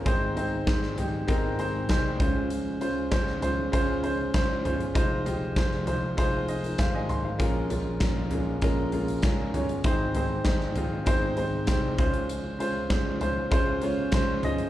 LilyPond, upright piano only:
<<
  \new Staff \with { instrumentName = "Upright piano" } { \time 4/4 \key des \lydian \tempo 4 = 98 << { r1 | r1 | r2 r8 <ees' aes' ees''>16 <f' bes'>16 <g' c'' f''>16 <bes' ees'' aes''>16 c'''16 <c'' f''>16~ | <c'' f''>16 r2. r8. |
r1 | r1 | } \\ { <aes c' ees' c''>8 <aes c' ees' c''>8 <aes c' ees' c''>8 <aes c' ees' g'>8 <aes c' ees' bes'>8 <aes c' ees' c''>8 <aes c' ees' c''>8 <aes des' f' c''>8~ | <aes des' f' c''>8 <aes des' f' c''>8 <aes des' f' c''>8 <aes des' f' c''>8 <aes des' f' c''>8 <aes des' f' c''>8 <aes des' f' c''>8 <aes des' f' c''>8 | <aes ees' f' c''>8 <aes ees' f' g'>8 <aes ees' f' c''>8 <aes ees' f' c''>8 <aes ees' f' c''>8 r4. | <aes des' f' bes'>8 <aes des' f' bes'>8 <aes des' f' bes'>8 <aes des' f' bes'>8 <aes des' f' bes'>8 <aes des' f' bes'>8 <aes des' f' bes'>8 <aes des' f' des''>8 |
<aes c' ees' c''>8 <aes c' ees' c''>8 <aes c' ees' c''>8 <aes c' ees' f'>8 <aes c' ees' c''>8 <aes c' ees' c''>8 <aes c' ees' c''>8 <aes des' f' c''>8~ | <aes des' f' c''>8 <aes des' f' c''>8 <aes des' f' c''>8 <aes des' f' c''>8 <aes des' f' c''>8 <aes des' f' des''>8 <aes des' f' c''>8 <aes des' f' ees''>8 | } >> }
  \new Staff \with { instrumentName = "Upright piano" } { \clef bass \time 4/4 \key des \lydian aes,4. r2 des8~ | des4 r2. | r1 | bes,4. r2 r8 |
aes,4. r2 des8~ | des4 r2. | }
>>